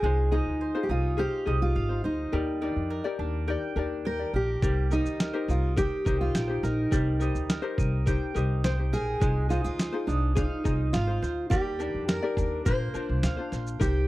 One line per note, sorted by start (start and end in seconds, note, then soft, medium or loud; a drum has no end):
0.00 0.38 C2 medium
0.00 2.32 G#3 medium
0.00 0.32 D#4 medium
0.00 0.31 D#4 medium
0.00 0.34 G#4 medium
0.00 0.30 G#4 medium
0.04 0.32 F4 medium
0.04 0.33 C5 medium
0.31 0.84 D#4 medium
0.31 0.89 D#4 medium
0.31 0.75 D#4 medium
0.31 0.74 F4 medium
0.31 0.75 G#4 medium
0.31 0.73 C5 medium
0.46 0.70 D2 medium
0.61 2.03 C5 medium
0.75 1.17 D#4 medium
0.75 1.17 F4 medium
0.75 1.16 G#4 medium
0.75 1.18 C5 medium
0.83 0.90 G4 medium
0.89 1.24 C2 medium
0.89 1.47 D#4 medium
0.89 1.17 F4 medium
1.17 1.45 D#4 medium
1.17 1.46 F4 medium
1.17 1.59 G4 medium
1.17 1.44 G#4 soft
1.17 1.47 C5 medium
1.17 1.74 F5 medium
1.46 1.70 C2 medium
1.46 1.90 D#4 medium
1.46 2.61 D#4 medium
1.46 1.89 F4 medium
1.46 1.89 G#4 medium
1.46 1.88 C5 medium
1.62 2.02 F4 medium
1.76 1.99 G#1 medium
1.76 2.39 F5 medium
1.89 2.32 D#4 soft
1.89 2.32 F4 soft
1.89 2.32 C5 soft
2.04 2.28 D2 medium
2.04 3.15 D#4 medium
2.04 2.38 C5 soft
2.32 2.68 D#2 medium
2.32 4.62 G3 medium
2.32 2.61 D#4 medium
2.32 2.62 G4 medium
2.32 2.60 A#4 soft
2.32 2.63 D5 medium
2.61 3.18 D4 medium
2.61 3.04 D#4 soft
2.61 3.04 G4 soft
2.61 3.04 A#4 soft
2.61 3.03 D5 medium
2.76 2.99 F2 medium
2.90 4.34 A#4 medium
3.04 3.47 D#4 medium
3.04 3.48 G4 medium
3.04 3.46 A#4 medium
3.04 3.47 D5 medium
3.19 3.54 D#2 medium
3.19 3.76 D4 medium
3.47 3.76 D#4 medium
3.47 3.77 G4 medium
3.47 3.75 A#4 medium
3.47 3.77 D5 medium
3.47 4.05 G5 medium
3.76 4.23 D#2 medium
3.76 4.68 D4 soft
3.76 4.20 D#4 medium
3.76 4.19 G4 medium
3.76 4.19 A#4 medium
3.76 4.18 D5 medium
4.05 4.35 A#4 medium
4.05 5.77 G5 medium
4.19 4.62 D#4 soft
4.19 4.63 G4 soft
4.19 4.62 D5 soft
4.33 4.57 A#1 medium
4.33 4.94 G4 medium
4.33 5.20 A#4 soft
4.62 4.98 C2 medium
4.62 6.91 G3 medium
4.62 4.91 D#4 medium
4.62 4.91 G4 medium
4.62 4.90 A#4 medium
4.62 4.92 C5 medium
4.62 kick loud
4.62 shaker medium
4.91 5.48 D#4 medium
4.91 5.34 D#4 soft
4.91 5.51 D#4 medium
4.91 5.33 G4 soft
4.91 5.34 A#4 soft
4.91 5.32 C5 soft
4.91 shaker soft
5.05 5.29 D2 medium
5.05 shaker soft
5.20 6.62 A#4 medium
5.20 snare medium
5.20 shaker medium
5.33 5.76 D#4 medium
5.33 5.77 G4 medium
5.33 5.75 A#4 medium
5.33 5.77 C5 medium
5.48 5.84 C2 medium
5.48 6.06 D#4 soft
5.48 5.77 F4 medium
5.48 shaker soft
5.76 6.05 D#4 medium
5.76 6.20 G4 medium
5.76 6.06 G4 medium
5.76 6.04 A#4 medium
5.76 6.06 C5 medium
5.76 6.34 G5 medium
5.76 kick medium
5.76 shaker medium
6.05 6.30 C2 medium
6.05 6.49 D#4 medium
6.05 7.21 D#4 soft
6.05 6.48 G4 medium
6.05 6.48 A#4 medium
6.05 6.46 C5 medium
6.05 kick medium
6.05 shaker soft
6.21 6.65 F4 medium
6.34 6.58 A#1 medium
6.34 8.06 G5 medium
6.34 snare medium
6.34 shaker medium
6.48 6.91 D#4 soft
6.48 6.92 G4 soft
6.48 6.91 C5 soft
6.63 6.87 A#1 medium
6.63 7.74 D#4 medium
6.63 7.48 A#4 medium
6.63 snare soft
6.63 shaker soft
6.91 7.27 C2 medium
6.91 9.21 G3 medium
6.91 7.19 D#4 medium
6.91 7.20 G4 medium
6.91 7.18 A#4 soft
6.91 7.21 C5 medium
6.91 kick medium
6.91 shaker medium
7.20 7.62 D#4 soft
7.20 7.78 D#4 medium
7.20 7.62 G4 soft
7.20 7.63 A#4 soft
7.20 7.61 C5 soft
7.20 shaker soft
7.35 7.58 D2 medium
7.35 shaker soft
7.50 8.92 A#4 medium
7.50 snare medium
7.50 shaker medium
7.62 8.06 D#4 medium
7.62 8.06 G4 medium
7.62 8.04 A#4 medium
7.62 8.06 C5 medium
7.78 8.13 C2 medium
7.78 8.35 D#4 medium
7.78 kick medium
7.78 shaker soft
8.06 8.34 D#4 medium
8.06 8.35 G4 medium
8.06 8.33 A#4 medium
8.06 8.36 C5 medium
8.06 8.63 G5 medium
8.06 kick medium
8.06 shaker medium
8.34 8.93 C2 medium
8.34 8.78 D#4 medium
8.34 9.50 D#4 soft
8.34 8.78 G4 medium
8.34 8.78 A#4 medium
8.34 8.76 C5 medium
8.34 shaker soft
8.64 8.72 C5 medium
8.64 9.27 G5 medium
8.64 snare medium
8.64 shaker medium
8.78 9.20 D#4 soft
8.78 9.21 G4 soft
8.78 9.21 C5 soft
8.93 9.16 A#1 medium
8.93 9.50 G#4 medium
8.93 9.27 A#4 soft
8.93 snare soft
8.93 shaker soft
9.20 9.57 C2 loud
9.20 11.51 G#3 medium
9.20 9.49 D#4 medium
9.20 9.50 F4 soft
9.20 9.48 G#4 soft
9.20 9.50 C5 medium
9.20 kick loud
9.20 shaker soft
9.49 9.93 D#4 soft
9.49 10.07 D#4 medium
9.49 9.63 F4 medium
9.49 9.92 F4 medium
9.49 9.93 G#4 soft
9.49 9.91 C5 soft
9.49 shaker soft
9.64 9.88 D2 medium
9.64 10.09 F4 medium
9.64 shaker soft
9.79 11.21 C5 medium
9.79 snare medium
9.79 shaker medium
9.92 10.35 D#4 medium
9.92 10.36 F4 medium
9.92 10.34 G#4 medium
9.92 10.36 C5 medium
10.07 10.43 C2 medium
10.07 10.34 D4 medium
10.07 10.65 D#4 medium
10.07 shaker soft
10.35 10.95 D#4 medium
10.35 10.63 D#4 medium
10.35 10.65 F4 medium
10.35 10.63 G#4 medium
10.35 10.65 C5 medium
10.35 10.93 F5 medium
10.35 kick medium
10.35 shaker medium
10.64 10.89 C2 medium
10.64 11.08 D#4 medium
10.64 11.57 D#4 medium
10.64 11.08 F4 medium
10.64 11.08 G#4 medium
10.64 11.06 C5 medium
10.64 kick medium
10.64 shaker soft
10.93 11.17 G#1 medium
10.93 11.47 F4 medium
10.93 11.57 F5 medium
10.93 snare medium
10.93 shaker medium
11.07 11.50 D#4 soft
11.07 11.51 F4 soft
11.07 11.51 C5 soft
11.22 11.46 D2 medium
11.22 11.57 C5 soft
11.22 snare soft
11.22 shaker soft
11.50 11.86 D#2 medium
11.50 12.65 G3 medium
11.50 11.79 D#4 soft
11.50 12.08 G4 medium
11.50 11.80 G4 medium
11.50 11.78 A#4 medium
11.50 11.80 D5 medium
11.50 kick loud
11.50 shaker medium
11.79 12.36 D4 medium
11.79 12.22 D#4 medium
11.79 12.22 G4 soft
11.79 12.22 A#4 soft
11.79 12.21 D5 soft
11.79 shaker soft
11.95 12.18 F2 medium
12.08 12.62 A#4 medium
12.08 13.52 A#4 medium
12.08 snare medium
12.08 shaker medium
12.22 12.66 D#4 medium
12.22 12.66 G4 medium
12.22 12.64 A#4 medium
12.22 12.66 D5 medium
12.37 12.61 D#2 medium
12.37 12.72 D4 soft
12.37 kick medium
12.37 shaker soft
12.65 12.90 A#1 medium
12.65 14.08 A#3 medium
12.65 12.94 D4 medium
12.65 12.95 F4 medium
12.65 12.93 A#4 medium
12.65 13.48 C5 medium
12.65 12.95 C5 medium
12.65 kick medium
12.65 shaker medium
12.94 13.86 D4 medium
12.94 13.38 D4 medium
12.94 13.37 F4 medium
12.94 13.37 A#4 soft
12.94 13.36 C5 medium
12.94 muted upright bass stroke soft
12.94 shaker soft
13.09 13.21 C2 medium
13.23 13.35 D2 medium
13.23 13.81 F5 medium
13.23 snare medium
13.23 shaker medium
13.37 13.80 D4 soft
13.37 13.80 F4 soft
13.37 13.80 C5 soft
13.52 13.76 A#1 medium
13.52 14.08 C5 medium
13.52 snare soft
13.52 shaker soft
13.67 shaker soft
13.79 14.08 C2 loud
13.79 14.08 D#4 medium
13.79 14.08 G4 medium
13.79 14.08 A#4 medium
13.79 14.08 C5 medium
13.79 14.08 G5 medium
13.79 kick loud
13.79 shaker medium